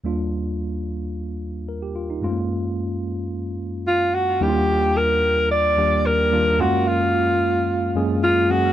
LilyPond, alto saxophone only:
\new Staff \with { instrumentName = "Alto saxophone" } { \time 4/4 \key ees \major \tempo 4 = 110 r1 | r2. f'8 ges'8 | g'4 bes'4 d''4 bes'4 | ges'8 f'2 r8 f'8 ges'8 | }